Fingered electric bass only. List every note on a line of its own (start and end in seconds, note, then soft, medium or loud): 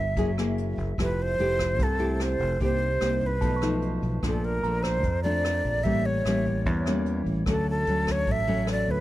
0.00 0.17 G1 medium
0.17 0.74 F#1 loud
0.78 0.97 F#1 medium
0.98 1.36 F1 medium
1.39 1.79 F1 medium
1.79 2.36 C2 medium
2.40 2.59 F1 medium
2.61 2.98 C2 medium
3.02 3.42 C2 medium
3.42 3.99 B1 medium
4.03 4.21 B1 medium
4.23 4.61 A#1 medium
4.63 5.04 A#1 medium
5.04 5.61 F2 medium
5.65 5.84 A#1 medium
5.85 6.23 A1 medium
6.25 6.66 A1 medium
6.66 7.23 E2 medium
7.26 7.45 A1 medium
7.46 7.84 D2 medium
7.87 8.27 D2 medium
8.27 8.84 A1 loud
8.88 9.00 D2 medium